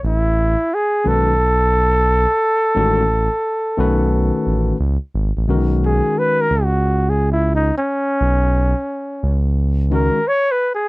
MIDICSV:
0, 0, Header, 1, 4, 480
1, 0, Start_track
1, 0, Key_signature, 5, "major"
1, 0, Tempo, 681818
1, 23, Time_signature, 4, 2, 24, 8
1, 7662, End_track
2, 0, Start_track
2, 0, Title_t, "Flugelhorn"
2, 0, Program_c, 0, 56
2, 47, Note_on_c, 0, 64, 91
2, 524, Note_on_c, 0, 68, 93
2, 535, Note_off_c, 0, 64, 0
2, 760, Note_on_c, 0, 69, 95
2, 771, Note_off_c, 0, 68, 0
2, 3391, Note_off_c, 0, 69, 0
2, 4121, Note_on_c, 0, 68, 87
2, 4356, Note_on_c, 0, 71, 106
2, 4367, Note_off_c, 0, 68, 0
2, 4516, Note_on_c, 0, 70, 95
2, 4527, Note_off_c, 0, 71, 0
2, 4673, Note_on_c, 0, 66, 81
2, 4684, Note_off_c, 0, 70, 0
2, 4997, Note_on_c, 0, 68, 82
2, 5007, Note_off_c, 0, 66, 0
2, 5150, Note_off_c, 0, 68, 0
2, 5153, Note_on_c, 0, 64, 77
2, 5297, Note_off_c, 0, 64, 0
2, 5317, Note_on_c, 0, 63, 87
2, 5459, Note_off_c, 0, 63, 0
2, 5475, Note_on_c, 0, 61, 87
2, 6641, Note_off_c, 0, 61, 0
2, 6994, Note_on_c, 0, 70, 95
2, 7236, Note_on_c, 0, 73, 115
2, 7247, Note_off_c, 0, 70, 0
2, 7402, Note_on_c, 0, 71, 100
2, 7413, Note_off_c, 0, 73, 0
2, 7552, Note_off_c, 0, 71, 0
2, 7565, Note_on_c, 0, 68, 85
2, 7662, Note_off_c, 0, 68, 0
2, 7662, End_track
3, 0, Start_track
3, 0, Title_t, "Tine electric piano"
3, 0, Program_c, 1, 4
3, 734, Note_on_c, 1, 51, 59
3, 737, Note_on_c, 1, 56, 52
3, 742, Note_on_c, 1, 61, 49
3, 749, Note_on_c, 1, 66, 54
3, 753, Note_on_c, 1, 71, 63
3, 929, Note_off_c, 1, 51, 0
3, 930, Note_off_c, 1, 56, 0
3, 933, Note_off_c, 1, 61, 0
3, 937, Note_off_c, 1, 66, 0
3, 938, Note_off_c, 1, 71, 0
3, 1933, Note_on_c, 1, 51, 71
3, 1938, Note_on_c, 1, 56, 64
3, 1943, Note_on_c, 1, 61, 69
3, 1948, Note_on_c, 1, 66, 63
3, 1951, Note_on_c, 1, 69, 75
3, 2128, Note_off_c, 1, 51, 0
3, 2131, Note_off_c, 1, 56, 0
3, 2134, Note_off_c, 1, 61, 0
3, 2136, Note_off_c, 1, 66, 0
3, 2137, Note_off_c, 1, 69, 0
3, 2655, Note_on_c, 1, 51, 80
3, 2659, Note_on_c, 1, 57, 66
3, 2665, Note_on_c, 1, 61, 70
3, 2669, Note_on_c, 1, 66, 74
3, 2676, Note_on_c, 1, 71, 83
3, 3346, Note_off_c, 1, 51, 0
3, 3348, Note_off_c, 1, 57, 0
3, 3351, Note_off_c, 1, 61, 0
3, 3353, Note_off_c, 1, 66, 0
3, 3356, Note_off_c, 1, 71, 0
3, 3854, Note_on_c, 1, 50, 55
3, 3857, Note_on_c, 1, 56, 60
3, 3863, Note_on_c, 1, 61, 60
3, 3869, Note_on_c, 1, 66, 65
3, 3874, Note_on_c, 1, 70, 73
3, 3900, Note_on_c, 1, 51, 74
3, 3918, Note_off_c, 1, 50, 0
3, 4547, Note_off_c, 1, 56, 0
3, 4550, Note_off_c, 1, 61, 0
3, 4553, Note_off_c, 1, 66, 0
3, 4555, Note_off_c, 1, 70, 0
3, 4568, Note_off_c, 1, 51, 0
3, 6972, Note_on_c, 1, 51, 66
3, 6977, Note_on_c, 1, 56, 63
3, 6982, Note_on_c, 1, 61, 62
3, 6988, Note_on_c, 1, 66, 60
3, 6993, Note_on_c, 1, 70, 69
3, 7168, Note_off_c, 1, 51, 0
3, 7170, Note_off_c, 1, 56, 0
3, 7173, Note_off_c, 1, 61, 0
3, 7176, Note_off_c, 1, 66, 0
3, 7178, Note_off_c, 1, 70, 0
3, 7662, End_track
4, 0, Start_track
4, 0, Title_t, "Analog synth bass"
4, 0, Program_c, 2, 38
4, 24, Note_on_c, 2, 33, 108
4, 395, Note_off_c, 2, 33, 0
4, 744, Note_on_c, 2, 35, 95
4, 1593, Note_off_c, 2, 35, 0
4, 1943, Note_on_c, 2, 33, 107
4, 2315, Note_off_c, 2, 33, 0
4, 2664, Note_on_c, 2, 35, 96
4, 3035, Note_off_c, 2, 35, 0
4, 3145, Note_on_c, 2, 33, 86
4, 3330, Note_off_c, 2, 33, 0
4, 3378, Note_on_c, 2, 37, 93
4, 3502, Note_off_c, 2, 37, 0
4, 3622, Note_on_c, 2, 32, 88
4, 3744, Note_off_c, 2, 32, 0
4, 3780, Note_on_c, 2, 33, 75
4, 3844, Note_off_c, 2, 33, 0
4, 3861, Note_on_c, 2, 35, 98
4, 4233, Note_off_c, 2, 35, 0
4, 4581, Note_on_c, 2, 37, 97
4, 5431, Note_off_c, 2, 37, 0
4, 5780, Note_on_c, 2, 35, 114
4, 6152, Note_off_c, 2, 35, 0
4, 6500, Note_on_c, 2, 37, 91
4, 7110, Note_off_c, 2, 37, 0
4, 7662, End_track
0, 0, End_of_file